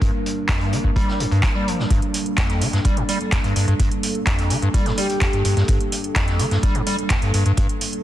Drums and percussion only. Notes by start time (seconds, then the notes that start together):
0.01 kick, closed hi-hat
0.26 closed hi-hat
0.49 kick, snare, clap, closed hi-hat
0.61 closed hi-hat
0.73 closed hi-hat
0.84 kick
0.96 kick, closed hi-hat
1.08 snare
1.20 closed hi-hat
1.32 closed hi-hat
1.43 kick, snare, clap, closed hi-hat
1.68 closed hi-hat
1.79 snare
1.90 kick, closed hi-hat
2.02 closed hi-hat
2.14 closed hi-hat, open hi-hat
2.26 closed hi-hat
2.38 kick, snare, clap, closed hi-hat
2.50 snare, closed hi-hat
2.61 closed hi-hat, open hi-hat
2.73 snare, closed hi-hat
2.85 kick, closed hi-hat
2.97 closed hi-hat
3.09 closed hi-hat, open hi-hat
3.21 closed hi-hat
3.32 kick, snare, clap, closed hi-hat
3.44 closed hi-hat
3.56 closed hi-hat, open hi-hat
3.68 closed hi-hat
3.80 kick, closed hi-hat
3.91 closed hi-hat
4.03 closed hi-hat, open hi-hat
4.15 closed hi-hat
4.26 kick, snare, clap, closed hi-hat
4.39 closed hi-hat
4.50 closed hi-hat, open hi-hat
4.62 closed hi-hat
4.74 kick, closed hi-hat
4.86 snare, closed hi-hat
4.97 closed hi-hat, open hi-hat
5.10 closed hi-hat
5.21 kick, snare, clap, closed hi-hat
5.33 closed hi-hat
5.45 closed hi-hat, open hi-hat
5.57 snare, closed hi-hat
5.68 kick, closed hi-hat
5.80 closed hi-hat
5.92 closed hi-hat, open hi-hat
6.04 closed hi-hat
6.16 kick, snare, clap, closed hi-hat
6.28 snare, closed hi-hat
6.39 closed hi-hat, open hi-hat
6.51 snare, closed hi-hat
6.63 kick, closed hi-hat
6.75 closed hi-hat
6.86 closed hi-hat, open hi-hat
6.99 closed hi-hat
7.10 kick, snare, clap, closed hi-hat
7.22 closed hi-hat
7.34 closed hi-hat, open hi-hat
7.46 closed hi-hat
7.57 kick, closed hi-hat
7.69 closed hi-hat
7.81 closed hi-hat, open hi-hat
7.93 closed hi-hat